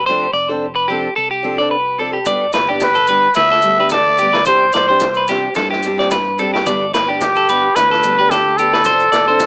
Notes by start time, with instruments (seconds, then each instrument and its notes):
0.06 fingered electric bass F1, steel-string acoustic guitar F3 C4 D4, clean electric guitar C5
0.10 steel-string acoustic guitar A4
0.33 fingered electric bass F1, clean electric guitar D5
0.49 steel-string acoustic guitar C4 D4 A4
0.75 clean electric guitar B4
0.88 steel-string acoustic guitar F3 C4 D4 A4, clean electric guitar G4
1.16 fingered electric bass C2, clean electric guitar A4
1.31 clean electric guitar G4
1.43 steel-string acoustic guitar F3 C4 D4 A4
1.58 steel-string acoustic guitar C4 D4 A4, clean electric guitar D5
1.71 clean electric guitar B4
1.99 steel-string acoustic guitar F3 C4 D4 A4, clean electric guitar A4
2.13 clean electric guitar G4
2.25 fingered electric bass G1, steel-string acoustic guitar G3 B3 D4 G4, clean electric guitar D5, kick, maracas
2.53 fingered electric bass G1, clean electric guitar B4, snare, maracas
2.68 steel-string acoustic guitar B3 D4 G4, clean electric guitar G4
2.80 trumpet B4, kick, snare, maracas
2.95 clean electric guitar A4, maracas
3.07 steel-string acoustic guitar G3 B3 D4 G4, clean electric guitar B4, maracas
3.34 fingered electric bass D2, clean electric guitar B4, trumpet E5, kick, snare, maracas
3.51 clean electric guitar A4, snare
3.62 steel-string acoustic guitar G3 B3 D4, maracas
3.66 steel-string acoustic guitar G4
3.79 steel-string acoustic guitar B3 D4 G4, clean electric guitar B4
3.89 clean electric guitar A4, trumpet D5, kick, snare, maracas
4.18 steel-string acoustic guitar G3 B3 D4, clean electric guitar G4, maracas
4.22 steel-string acoustic guitar G4
4.33 clean electric guitar B4, snare
4.45 fingered electric bass C2, steel-string acoustic guitar G3 C4 D4 G4, clean electric guitar C5, trumpet C5, kick, maracas
4.72 fingered electric bass C2, trumpet C5, clean electric guitar D5, snare, maracas
4.89 steel-string acoustic guitar C4 D4 G4, clean electric guitar C5
5.00 kick, snare, maracas
5.15 clean electric guitar B4, maracas
5.28 steel-string acoustic guitar G3 C4 D4 G4, clean electric guitar G4, snare, maracas
5.55 fingered electric bass G2, clean electric guitar A4, kick, snare, maracas
5.71 clean electric guitar G4, snare
5.83 steel-string acoustic guitar G3 C4 D4, maracas
5.87 steel-string acoustic guitar G4
5.98 steel-string acoustic guitar C4 D4 G4, clean electric guitar D5, snare
6.11 clean electric guitar B4, kick, snare, maracas
6.38 steel-string acoustic guitar G3 C4 D4 G4, clean electric guitar A4, maracas
6.54 clean electric guitar G4, snare
6.66 fingered electric bass G1, steel-string acoustic guitar G3 B3 D4 G4, clean electric guitar D5, kick, maracas
6.94 fingered electric bass G1, clean electric guitar B4, snare, maracas
7.08 steel-string acoustic guitar B3 D4 G4, clean electric guitar G4
7.21 trumpet G4, kick, snare, maracas
7.36 clean electric guitar A4, maracas
7.49 steel-string acoustic guitar B3 D4 G4, clean electric guitar B4, maracas
7.76 fingered electric bass D2, trumpet B4, clean electric guitar B4, kick, snare, maracas
7.91 clean electric guitar A4, snare
8.03 steel-string acoustic guitar G3 B3 D4 G4, maracas
8.18 steel-string acoustic guitar B3 D4 G4, clean electric guitar B4
8.30 trumpet G4, clean electric guitar A4, kick, snare, maracas
8.57 steel-string acoustic guitar B3 D4 G4, clean electric guitar G4, trumpet A4, muted steel-string acoustic guitar stroke, maracas
8.73 clean electric guitar B4, snare
8.84 fingered electric bass F1, steel-string acoustic guitar F3 C4 D4, clean electric guitar C5, kick, maracas
8.88 steel-string acoustic guitar A4
8.99 maracas
9.12 fingered electric bass F1, clean electric guitar D5, snare, maracas
9.28 steel-string acoustic guitar C4 D4 A4, clean electric guitar C5
9.40 kick, snare, maracas